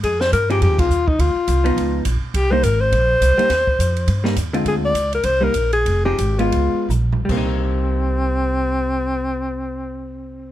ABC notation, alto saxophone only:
X:1
M:4/4
L:1/8
Q:"Swing" 1/4=208
K:Cm
V:1 name="Alto saxophone"
A c B G G F2 E | F6 z2 | G c B c4- c- | c6 z2 |
A d2 B c B2 A- | A G2 F3 z2 | C8- | C8 |]